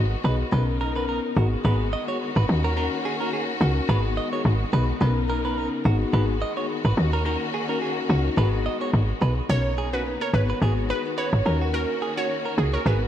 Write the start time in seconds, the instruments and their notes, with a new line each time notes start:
Already playing: log drum bass G#1, string section D#3 G#3 B3 F#4
0.24 log drum bass B1, tine electric piano B3 D#4 F#4 G#4, clean electric guitar B4
0.52 log drum bass B1, string section C#3 B3 D#4 A#4, tine electric piano B3 C#4 D#4 A#4, clean electric guitar B4
0.81 clean electric guitar A#4
0.95 tine electric piano B3 C#4 D#4 A#4, clean electric guitar B4
1.09 clean electric guitar A#4
1.36 log drum bass G#1, string section D#3 G#3 B3 F#4, tine electric piano B3 D#4 F#4 G#4, clean electric guitar F#4
1.64 log drum bass G#1, tine electric piano B3 D#4 F#4 G#4, clean electric guitar B4
1.93 clean electric guitar D#5
2.08 tine electric piano B3 D#4 F#4 G#4, clean electric guitar C#5
2.36 log drum bass G#1, clean electric guitar B4
2.48 log drum bass D#2, string section A#3 C#4, tine electric piano C#4 D#4 F#4 A#4
2.64 clean electric guitar A#4
2.77 tine electric piano C#4 D#4 F#4 A#4, clean electric guitar A#4
3.05 clean electric guitar G#4
3.20 tine electric piano C#4 D#4 F#4 A#4, clean electric guitar A#4
3.33 clean electric guitar G#4
3.61 log drum bass C#2, tine electric piano C#4 D#4 F#4 A#4, clean electric guitar F#4
3.89 log drum bass G#1, string section D#3 G#3 B3, tine electric piano B3 D#4 F#4 G#4, clean electric guitar B4
4.17 clean electric guitar D#5
4.32 tine electric piano B3 D#4 F#4 G#4, clean electric guitar C#5
4.45 log drum bass G#1
4.73 log drum bass B1, tine electric piano B3 D#4 F#4 G#4, clean electric guitar B4
5.01 log drum bass B1, string section C#3 D#4 A#4, tine electric piano B3 C#4 D#4 A#4, clean electric guitar B4
5.30 clean electric guitar A#4
5.45 tine electric piano B3 C#4 D#4 A#4, clean electric guitar B4
5.58 clean electric guitar A#4
5.85 log drum bass G#1, string section D#3 G#3 F#4, tine electric piano B3 D#4 F#4 G#4, clean electric guitar F#4
6.13 log drum bass G#1, tine electric piano B3 D#4 F#4 G#4, clean electric guitar B4
6.42 clean electric guitar D#5
6.57 tine electric piano B3 D#4 F#4 G#4, clean electric guitar C#5
6.85 log drum bass G#1, clean electric guitar B4
6.97 log drum bass D#2, string section A#3 C#4, tine electric piano C#4 D#4 F#4 A#4
7.13 clean electric guitar A#4
7.25 tine electric piano C#4 D#4 F#4 A#4, clean electric guitar A#4
7.54 clean electric guitar G#4
7.68 tine electric piano C#4 D#4 F#4 A#4, clean electric guitar A#4
7.82 clean electric guitar G#4
8.09 log drum bass C#2, tine electric piano C#4 D#4 F#4 A#4, clean electric guitar F#4
8.37 log drum bass G#1, string section G#3 B3, tine electric piano B3 D#4 F#4 G#4, clean electric guitar B4
8.66 clean electric guitar D#5
8.80 tine electric piano B3 D#4 F#4 G#4, clean electric guitar C#5
8.93 log drum bass G#1
9.21 log drum bass B1, tine electric piano B3 D#4 F#4 G#4, clean electric guitar B4
9.49 log drum bass B1, string section C#3 A#3 B3 D#4, tine electric piano B3 C#4 D#4 A#4, synth pluck C#5
9.78 clean electric guitar G#4
9.93 tine electric piano B3 C#4 D#4 A#4, clean electric guitar F#4, synth pluck B4
10.21 clean electric guitar A#4, synth pluck C#5
10.33 log drum bass G#1, string section D#3 G#3 B3 F#4, tine electric piano B3 D#4 F#4 G#4, synth pluck B4
10.50 clean electric guitar B4
10.61 log drum bass G#1, tine electric piano B3 D#4 F#4 G#4, clean electric guitar G#4
10.90 synth pluck B4, clean electric guitar B4
11.05 tine electric piano B3 D#4 F#4 G#4
11.18 clean electric guitar B4, synth pluck C#5
11.33 log drum bass G#1
11.45 log drum bass D#2, string section A#3 C#4, tine electric piano C#4 D#4 F#4 A#4, clean electric guitar A#4
11.62 clean electric guitar F#4
11.73 tine electric piano C#4 D#4 F#4 A#4, synth pluck A#4
12.02 clean electric guitar G#4
12.17 tine electric piano C#4 D#4 F#4 A#4, clean electric guitar F#4, synth pluck C#5
12.46 clean electric guitar A#4
12.58 log drum bass C#2, tine electric piano C#4 D#4 F#4 A#4, synth pluck G#4
12.74 synth pluck A#4, clean electric guitar C#5
12.86 log drum bass G#1, string section G#3 B3, tine electric piano B3 D#4 F#4 G#4, clean electric guitar G#4, synth pluck B4